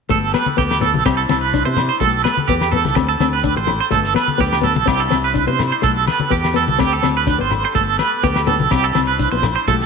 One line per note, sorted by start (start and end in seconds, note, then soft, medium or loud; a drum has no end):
0.09 0.33 G1 medium
0.09 0.25 A3 medium
0.09 1.04 B3 medium
0.09 1.04 G4 medium
0.09 1.04 A4 medium
0.09 0.33 A4 medium
0.09 kick medium
0.09 shekere loud
0.34 0.49 B3 medium
0.34 0.57 B4 medium
0.34 snare medium
0.34 low agogo medium
0.34 shekere medium
0.46 high conga medium
0.57 0.93 D2 medium
0.57 0.72 B3 medium
0.57 0.80 G4 medium
0.57 kick medium
0.57 shekere loud
0.71 snare medium
0.71 low agogo medium
0.81 0.96 B3 medium
0.81 1.04 A4 medium
0.81 low conga medium
0.81 shekere medium
0.94 1.05 B1 medium
0.94 high conga medium
1.05 1.28 C2 loud
1.05 1.21 C4 medium
1.05 2.00 D4 medium
1.05 2.00 E4 medium
1.05 1.17 G4 medium
1.05 2.00 C5 medium
1.05 kick medium
1.05 snare medium
1.05 low agogo medium
1.05 shekere loud
1.17 1.40 A4 medium
1.29 1.64 C2 medium
1.29 1.44 C4 medium
1.29 snare medium
1.29 high conga medium
1.29 low agogo medium
1.41 1.64 B4 medium
1.54 1.62 D4 medium
1.54 kick loud
1.54 snare soft
1.54 shekere medium
1.65 1.89 C3 loud
1.65 1.81 B3 medium
1.65 1.88 C5 medium
1.77 snare medium
1.77 low conga medium
1.77 low agogo medium
1.77 shekere medium
1.89 2.00 C5 medium
2.00 2.24 B1 loud
2.00 2.16 A3 medium
2.00 2.95 B3 medium
2.00 4.85 G4 medium
2.00 2.23 A4 medium
2.00 4.85 A4 medium
2.00 kick medium
2.00 shekere loud
2.24 2.40 B3 medium
2.24 2.47 B4 medium
2.24 snare medium
2.24 low agogo medium
2.24 shekere medium
2.37 high conga medium
2.48 2.83 E2 medium
2.48 2.64 B3 medium
2.48 2.71 G4 medium
2.48 kick medium
2.48 shekere medium
2.61 snare medium
2.61 low agogo medium
2.72 2.88 B3 medium
2.72 2.95 A4 medium
2.72 low conga medium
2.72 shekere medium
2.85 2.96 C2 medium
2.85 snare soft
2.85 high conga medium
2.95 3.19 D2 loud
2.95 3.11 C4 medium
2.95 3.91 D4 medium
2.95 muted clean electric guitar stroke medium
2.95 kick loud
2.95 snare medium
2.95 low agogo medium
2.95 shekere medium
3.09 3.32 A4 medium
3.20 3.55 D2 medium
3.20 3.36 C4 medium
3.20 snare medium
3.20 high conga medium
3.20 low agogo medium
3.20 shekere medium
3.33 3.56 B4 medium
3.44 3.52 D4 medium
3.44 kick loud
3.44 shekere medium
3.56 3.79 A1 medium
3.56 3.79 C5 medium
3.56 muted nylon-string guitar stroke medium
3.67 low conga medium
3.67 low agogo medium
3.80 3.91 C5 medium
3.91 4.15 G1 loud
3.91 4.06 A3 medium
3.91 4.87 B3 medium
3.91 4.14 A4 medium
3.91 kick medium
3.91 shekere medium
4.04 snare soft
4.14 4.30 B3 medium
4.14 4.39 B4 medium
4.14 snare medium
4.14 low agogo medium
4.28 high conga medium
4.38 4.75 D2 loud
4.38 4.54 B3 medium
4.38 4.63 G4 medium
4.38 kick medium
4.38 shekere medium
4.53 snare medium
4.53 low agogo medium
4.61 4.77 B3 medium
4.61 4.86 A4 medium
4.61 low conga medium
4.61 shekere medium
4.76 4.87 B1 medium
4.76 high conga medium
4.86 5.10 C2 loud
4.86 5.02 C4 medium
4.86 5.83 D4 medium
4.86 5.83 E4 medium
4.86 5.00 G4 medium
4.86 5.83 C5 medium
4.86 kick medium
4.86 snare medium
4.86 low agogo medium
4.86 shekere loud
5.00 5.23 A4 medium
5.11 5.46 C2 medium
5.11 5.26 C4 medium
5.11 snare medium
5.11 high conga medium
5.11 low agogo medium
5.11 shekere medium
5.24 5.47 B4 medium
5.34 5.43 D4 medium
5.34 kick medium
5.34 shekere medium
5.47 5.71 C3 medium
5.47 5.63 B3 medium
5.47 5.71 C5 medium
5.59 snare medium
5.59 low conga medium
5.59 low agogo medium
5.59 shekere medium
5.72 5.83 C5 medium
5.82 6.07 B1 loud
5.82 5.98 A3 medium
5.82 6.78 B3 medium
5.82 6.78 G4 medium
5.82 6.06 A4 medium
5.82 8.69 A4 medium
5.82 kick medium
5.82 shekere medium
6.07 6.31 B4 medium
6.07 snare medium
6.07 high conga medium
6.07 low agogo medium
6.07 shekere medium
6.20 high conga medium
6.30 6.66 E2 medium
6.30 6.46 B3 medium
6.30 6.54 G4 medium
6.30 kick medium
6.30 shekere medium
6.44 snare medium
6.44 low agogo medium
6.54 6.70 B3 medium
6.54 6.79 A4 medium
6.54 shekere medium
6.68 6.79 C2 medium
6.68 high conga medium
6.79 7.03 D2 loud
6.79 6.94 C4 medium
6.79 7.75 D4 medium
6.79 8.70 G4 medium
6.79 6.92 G4 medium
6.79 kick loud
6.79 snare medium
6.79 low agogo medium
6.79 shekere loud
6.93 7.16 A4 medium
7.03 7.39 D2 medium
7.03 7.18 C4 medium
7.03 snare medium
7.03 high conga medium
7.03 low agogo medium
7.17 7.39 B4 medium
7.27 7.35 D4 medium
7.27 kick medium
7.27 snare soft
7.27 shekere loud
7.39 7.63 G#1 medium
7.39 7.54 B3 medium
7.39 7.64 C5 medium
7.51 low conga medium
7.51 low agogo medium
7.51 shekere medium
7.65 7.75 C5 medium
7.75 7.98 G1 loud
7.75 7.90 A3 medium
7.75 8.71 B3 medium
7.75 7.98 A4 medium
7.75 kick medium
7.75 shekere medium
7.99 8.15 B3 medium
7.99 8.22 B4 medium
7.99 snare medium
7.99 low agogo medium
7.99 shekere medium
8.23 8.58 D2 medium
8.23 8.39 B3 medium
8.23 8.47 G4 medium
8.23 kick medium
8.23 shekere medium
8.36 snare medium
8.36 low agogo medium
8.47 8.63 B3 medium
8.47 8.70 A4 medium
8.47 low conga medium
8.47 shekere medium
8.60 8.71 B1 medium
8.60 high conga medium
8.71 8.94 C2 loud
8.71 8.87 C4 medium
8.71 9.67 D4 medium
8.71 9.67 E4 medium
8.71 8.84 G4 medium
8.71 9.67 C5 medium
8.71 kick medium
8.71 snare medium
8.71 low agogo medium
8.71 shekere loud
8.84 9.07 A4 medium
8.95 9.30 C2 medium
8.95 9.10 C4 medium
8.95 snare medium
8.95 high conga medium
8.95 low agogo medium
8.95 shekere medium
9.07 9.31 B4 medium
9.19 9.28 D4 medium
9.19 kick medium
9.19 shekere medium
9.32 9.55 A#1 medium
9.32 9.48 B3 medium
9.32 9.54 C5 medium
9.43 snare medium
9.43 low conga medium
9.43 low agogo medium
9.43 shekere medium
9.56 9.67 C5 medium
9.68 9.86 B1 medium
9.68 9.83 A3 medium
9.68 9.86 B3 medium
9.68 9.86 G4 medium
9.68 9.86 A4 medium
9.68 kick medium
9.68 shekere medium
9.80 snare soft